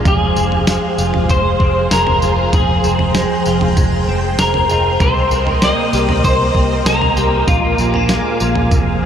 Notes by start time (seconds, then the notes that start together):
Already playing: G#3 D4 F4 G#4 F5 G#5
0.05 F1 F2 G#4 C5 C6, kick, floor tom, tambourine
0.36 F1 C4, tambourine
0.52 floor tom
0.67 G#3, snare, tambourine
0.86 G4
0.98 F1 F4, tambourine
1.14 floor tom
1.29 F1 G#3 C5, kick, floor tom, tambourine
1.60 F1 C4, kick
1.91 F1 G#3 A#4, snare, tambourine
2.07 floor tom
2.22 F1 F4, tambourine
2.53 F1 F2 G#4 G5, kick, floor tom, tambourine
2.84 F1 C4, tambourine
2.99 floor tom
3.14 G#3, snare, tambourine
3.46 F1 F4, tambourine
3.61 floor tom
3.77 F1 G#3, kick, floor tom, tambourine
4.08 F1 C4
4.39 F1 G#3 A#4, snare, tambourine
4.54 floor tom
4.69 F1 F4 D#5, tambourine
5.00 C2 C3 A#4 C5 D#5 G5, kick, floor tom, tambourine
5.31 C2 C4, tambourine
5.47 floor tom
5.62 A#3 D#5, snare, tambourine
5.93 C2 G4, tambourine
6.09 floor tom
6.24 C2 A#3 C5, kick, floor tom, tambourine
6.55 C2 C4, kick
6.85 C2 A#3 A#4, snare, tambourine
7.02 floor tom
7.16 C2 G4, tambourine
7.47 A#1 A#2 F4 A#4 F5 G#5 D6, kick, floor tom, tambourine
7.78 A#1 C4, tambourine
7.94 D4, floor tom
8.09 G#3, snare, tambourine
8.40 A#1 F4, tambourine
8.55 floor tom
8.71 F1 F2 C5 D#6, kick, floor tom, tambourine